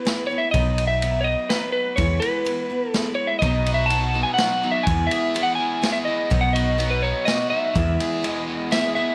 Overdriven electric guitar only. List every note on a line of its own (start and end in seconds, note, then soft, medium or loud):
3.42 4.63 B2 medium
3.67 4.39 F#4 medium
3.91 5.34 B3 medium
4.15 4.62 D#4 medium
4.40 4.88 F#4 medium
4.63 4.87 D#4 medium
4.88 6.08 E2 medium
5.11 5.82 G#4 medium
5.34 6.78 B3 medium
5.59 6.07 E4 medium
5.83 6.31 G#4 medium
6.08 6.32 E4 medium
6.31 7.52 B2 medium
6.55 7.26 F#4 medium
6.78 7.75 B3 medium
7.03 7.50 D#4 medium
7.27 7.76 F#4 medium
7.52 7.76 D#4 medium
7.77 8.97 E2 medium
8.01 8.70 G#4 medium
8.24 9.15 G#3 medium
8.48 8.95 B3 medium
8.71 9.15 G#4 medium
8.96 9.15 B3 medium